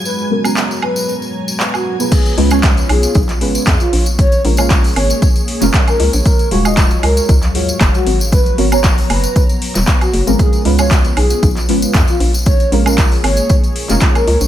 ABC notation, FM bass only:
X:1
M:4/4
L:1/16
Q:"Swing 16ths" 1/4=116
K:Dbmix
V:1 name="FM bass" clef=bass
z16 | z2 D,,3 z C,, z C,,2 A,,, z F,, z B,,,2- | B,,, z B,,,3 z A,,, z4 F,,, z2 D,, B,,, | z2 E,,,3 z D,, z D,,2 E,, z G,,, z A,,,2- |
A,,, z A,,,3 z G,,, z4 E,,, z2 G,,, A,,, | z2 D,,3 z C,, z C,,2 A,,, z F,, z B,,,2- | B,,, z B,,,3 z A,,, z4 F,,, z2 D,, B,,, |]